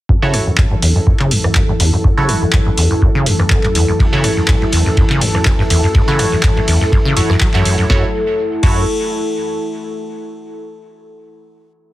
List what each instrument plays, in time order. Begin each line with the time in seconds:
0.09 acid bass F#2, analog synth pad F#2 E3 A4, ambient pad E4, kick
0.22 acid bass C#3, synth stab E4 F#4 A4 C#5
0.34 acid bass F#2, cross-stick, open hi-hat
0.47 acid bass F#2
0.54 ambient pad A4, clap
0.58 acid bass F#2, kick
0.71 acid bass G2
0.82 acid bass E2, open hi-hat
0.96 acid bass F#2
1.07 acid bass F#2, kick
1.18 acid bass C#3, ambient pad F#5, clap
1.31 acid bass F#2, open hi-hat
1.44 acid bass F#2, cross-stick
1.55 acid bass F#2, kick, clap
1.69 acid bass G2
1.80 acid bass E2, open hi-hat
1.93 acid bass F#2
2.04 acid bass F#2, kick
2.17 acid bass C#3, synth stab E4 F#4 A4 C#5
2.29 acid bass F#2, cross-stick, open hi-hat
2.42 acid bass F#2
2.53 acid bass F#2, kick, clap
2.66 acid bass G2
2.78 acid bass E2, open hi-hat
2.91 acid bass F#2
3.02 acid bass F#2, kick
3.15 acid bass C#3
3.26 acid bass F#2, open hi-hat
3.39 acid bass F#2, cross-stick
3.50 acid bass F#2, kick, clap
3.63 acid bass G2, clap
3.75 acid bass E2, open hi-hat
3.88 acid bass F#2
3.99 acid bass F#2, kick, ride
4.13 acid bass C#3, synth stab E4 F#4 A4 C#5
4.24 acid bass F#2, cross-stick, open hi-hat, ride
4.37 acid bass F#2, ambient pad E5
4.48 acid bass F#2, kick, snare, clap, ride
4.61 acid bass G2, ride
4.72 acid bass E2, open hi-hat, ride
4.86 acid bass F#2
4.97 acid bass F#2, kick, ride
5.10 acid bass C#3, clap
5.21 acid bass F#2, open hi-hat, ride
5.35 acid bass F#2, cross-stick
5.45 acid bass F#2, kick, snare, clap, ride
5.59 acid bass G2, snare
5.70 acid bass E2, open hi-hat, ride
5.83 acid bass F#2
5.95 acid bass F#2, kick, ride
6.08 acid bass C#3, synth stab E4 F#4 A4 C#5, ride
6.19 acid bass F#2, cross-stick, open hi-hat, ride
6.32 acid bass F#2
6.43 acid bass F#2, kick, snare, clap, ride
6.57 acid bass G2, ride
6.68 acid bass E2, open hi-hat, ride
6.80 acid bass F#2, snare
6.92 acid bass F#2, kick, ride
7.05 acid bass C#3
7.16 acid bass F#2, synth stab E4 F#4 A4 C#5, open hi-hat, ride
7.30 acid bass F#2, cross-stick, snare
7.40 acid bass F#3, kick, snare, clap, ride
7.54 acid bass F#2, synth stab E4 F#4 A4 C#5, snare, clap
7.65 acid bass F#2, open hi-hat, ride
7.78 acid bass F#2, ride
7.90 acid bass F#2, analog synth pad F#3 E4 A4, ambient pad E4, synth stab E4 F#4 A4 C#5, kick, snare
7.98 ambient pad A4
8.05 ambient pad F#5
8.63 acid bass F#2, synth stab E4 F#4 A4 C#5, kick, crash